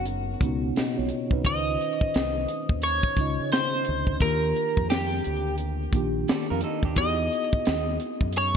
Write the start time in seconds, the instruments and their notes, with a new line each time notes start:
Already playing: fingered electric bass F#1, tine electric piano C#3 B3 C#4 D#4 C#5
0.06 closed hi-hat
0.41 fingered electric bass C#2, tine electric piano B2 B3 C#4 D#4, kick, closed hi-hat
0.46 tine electric piano F#4
0.76 tine electric piano F#4 D#5, muted fingered electric bass stroke, snare, closed hi-hat
0.98 fingered electric bass B1, tine electric piano F4 C#5
1.09 closed hi-hat
1.31 fingered electric bass C2, tine electric piano D#4 B4, kick
1.43 fingered electric bass C#2, tine electric piano D#3 C#4 D#4 F4, clean electric guitar D#5, kick, closed hi-hat
1.48 tine electric piano C5
1.81 closed hi-hat
2.01 kick
2.14 fingered electric bass C2, snare, closed hi-hat
2.48 closed hi-hat
2.69 fingered electric bass D#2, kick
2.82 clean electric guitar C#5, closed hi-hat
3.03 kick
3.16 fingered electric bass C#2, tine electric piano C#3 C#4 D#4 F4, kick, closed hi-hat
3.21 tine electric piano D#5
3.40 fingered electric bass C#3
3.52 clean electric guitar C5, snare, closed hi-hat
3.85 closed hi-hat
3.89 fingered electric bass D2
4.07 kick
4.19 fingered electric bass D#2, tine electric piano D#3 A#3 D4 F4, clean electric guitar A#4, kick, closed hi-hat
4.24 tine electric piano G4
4.56 closed hi-hat
4.77 fingered electric bass F2, kick
4.90 clean electric guitar G4, snare, closed hi-hat
5.24 fingered electric bass D2, closed hi-hat
5.58 closed hi-hat
5.92 fingered electric bass A#1, tine electric piano D#3 A#3 D4 F4, kick, closed hi-hat
5.97 tine electric piano G4
6.28 clean electric guitar A4 D5, muted fingered electric bass stroke, snare, closed hi-hat
6.50 fingered electric bass F2, clean electric guitar F4 A#4
6.61 clean electric guitar D#4 A4, closed hi-hat
6.83 fingered electric bass D#2, clean electric guitar D4 G4, kick
6.96 fingered electric bass E2, tine electric piano B3 D#4 E4 F#4, clean electric guitar D#5, kick, closed hi-hat
7.00 tine electric piano G4
7.07 tine electric piano G#4
7.33 closed hi-hat
7.53 kick
7.65 fingered electric bass D#2, snare, closed hi-hat
8.00 closed hi-hat
8.21 fingered electric bass F#2, kick
8.33 closed hi-hat
8.38 clean electric guitar C#5